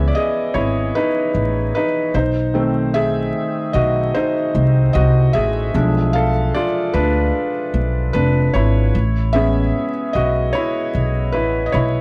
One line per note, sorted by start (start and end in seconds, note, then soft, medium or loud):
0.00 0.10 C#2 loud
0.00 2.10 E3 medium
0.00 2.10 B3 medium
0.00 2.10 C#4 medium
0.00 0.55 E4 medium
0.00 0.16 G#4 medium
0.00 0.54 C#5 medium
0.00 2.15 E5 medium
0.08 0.13 D5 medium
0.15 0.52 G#4 medium
0.15 0.55 D#5 medium
0.54 0.90 G#1 medium
0.54 0.92 E4 medium
0.54 0.95 C#5 medium
0.95 1.71 D#4 medium
0.95 1.73 B4 medium
1.35 1.70 A1 medium
1.75 1.85 D#4 medium
1.75 1.84 B4 medium
2.14 3.30 B1 medium
2.14 2.91 D#4 medium
2.14 2.96 C5 medium
2.54 3.70 D#3 medium
2.54 3.70 A3 medium
2.54 3.70 C4 medium
2.94 3.70 G#4 medium
2.94 3.76 E5 loud
3.73 4.10 B1 medium
3.73 4.12 F#4 medium
3.73 4.15 D#5 medium
4.14 4.91 D#4 medium
4.14 4.96 C5 medium
4.55 4.90 C2 medium
4.93 5.30 C2 loud
4.93 5.32 F#4 medium
4.93 5.35 D#5 medium
5.33 5.70 A1 medium
5.33 6.10 G#4 medium
5.33 6.09 E5 loud
5.74 6.50 B1 loud
5.74 6.29 F3 medium
5.74 6.30 G#3 medium
5.74 6.30 D4 medium
6.13 6.52 A4 medium
6.13 6.54 F5 medium
6.54 6.65 F4 medium
6.54 6.63 D5 medium
6.94 7.30 D2 medium
6.94 8.10 D4 medium
6.94 8.09 B4 medium
7.74 8.10 B1 medium
8.13 8.50 F1 medium
8.13 8.52 D4 medium
8.13 8.50 B4 medium
8.54 8.90 G#1 medium
8.54 9.31 E4 medium
8.54 9.29 C#5 medium
8.95 9.70 A1 loud
9.33 9.89 G#3 soft
9.33 9.89 B3 soft
9.33 9.90 C#4 medium
9.33 10.10 G#4 medium
9.33 10.15 E5 loud
10.13 10.50 B1 medium
10.13 10.52 F#4 medium
10.13 10.51 D#5 medium
10.53 11.30 E4 medium
10.53 11.35 C#5 medium
10.95 11.34 B1 medium
11.32 11.70 A1 medium
11.32 11.66 E4 medium
11.32 11.68 B4 medium
11.66 11.73 D#5 medium
11.72 12.01 B1 medium
11.72 12.01 E4 medium
11.72 12.01 C#5 medium